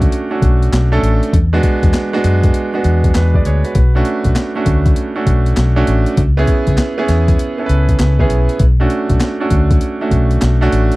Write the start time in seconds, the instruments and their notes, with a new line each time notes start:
Already playing: grand piano A3 C#4 D4 F#4 G#4 C#5
0.01 kick, closed hi-hat
0.12 closed hi-hat
0.31 grand piano A3 C#4 D4 F#4
0.42 fingered electric bass B1, kick, closed hi-hat
0.63 closed hi-hat
0.73 fingered electric bass B1, snare, clap, closed hi-hat
0.92 grand piano A3 C#4 D4 A4
1.03 fingered electric bass A1, closed hi-hat
1.23 closed hi-hat
1.33 fingered electric bass E2, kick, closed hi-hat
1.53 grand piano G#3 B3 D4 F#4
1.63 kick, closed hi-hat
1.83 fingered electric bass E2, kick, closed hi-hat
1.94 snare, clap, closed hi-hat
2.13 grand piano G#3 B3 D4 F#4
2.24 fingered electric bass F#2, closed hi-hat
2.43 kick, closed hi-hat
2.54 closed hi-hat
2.74 grand piano G#3 B3 D4 F#4
2.84 fingered electric bass E2, closed hi-hat
3.04 kick, closed hi-hat
3.15 fingered electric bass E2, grand piano F#4 B4, snare, clap, closed hi-hat
3.34 grand piano G#4 D5, kick
3.45 fingered electric bass D2, grand piano G#4 C#5, closed hi-hat
3.65 grand piano F#4 B4, closed hi-hat
3.75 fingered electric bass B1, kick, closed hi-hat
3.95 grand piano A3 C#4 D4 F#4
4.05 closed hi-hat
4.24 fingered electric bass B1, kick, closed hi-hat
4.36 snare, clap, closed hi-hat
4.55 grand piano A3 C#4 D4 F#4
4.66 fingered electric bass D2, kick, closed hi-hat
4.86 kick, closed hi-hat
4.96 closed hi-hat
5.15 grand piano A3 C#4 D4 F#4
5.27 fingered electric bass B1, kick, closed hi-hat
5.46 closed hi-hat
5.57 fingered electric bass B1, snare, clap, closed hi-hat
5.76 grand piano A3 C#4 D4 F#4
5.87 fingered electric bass A1, closed hi-hat
6.06 closed hi-hat
6.17 fingered electric bass C#2, kick, closed hi-hat
6.37 grand piano B3 C#4 E4 G#4
6.47 kick, closed hi-hat
6.67 fingered electric bass C#2, kick, closed hi-hat
6.78 snare, clap, closed hi-hat
6.98 grand piano B3 C#4 E4 G#4
7.08 fingered electric bass E2, snare, closed hi-hat
7.28 kick, closed hi-hat
7.39 closed hi-hat
7.58 grand piano B3 C#4 E4 A4
7.66 fingered electric bass C#2, grand piano B4, closed hi-hat
7.89 kick, closed hi-hat
7.99 fingered electric bass C#2, snare, clap, closed hi-hat
8.19 grand piano B3 C#4 E4 G#4, kick
8.30 fingered electric bass B1, closed hi-hat
8.49 closed hi-hat
8.59 fingered electric bass B1, kick, closed hi-hat
8.80 grand piano A3 C#4 D4 F#4
8.90 closed hi-hat
9.10 fingered electric bass B1, kick, closed hi-hat
9.20 snare, clap, closed hi-hat
9.40 grand piano A3 C#4 D4 F#4
9.50 fingered electric bass D2, kick, closed hi-hat
9.71 kick, closed hi-hat
9.81 closed hi-hat
10.01 grand piano A3 C#4 D4 F#4
10.11 fingered electric bass B1, kick, closed hi-hat
10.31 closed hi-hat
10.42 fingered electric bass B1, snare, clap, closed hi-hat
10.61 grand piano A3 C#4 D4 F#4
10.72 fingered electric bass A1, closed hi-hat
10.92 closed hi-hat